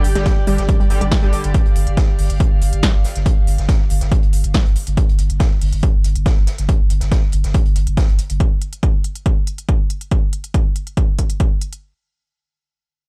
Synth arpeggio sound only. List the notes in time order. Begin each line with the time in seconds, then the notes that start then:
0.15 G3
0.26 G3
0.47 G3
0.69 G3
0.80 G3
1.01 G3
1.23 G3
1.33 G3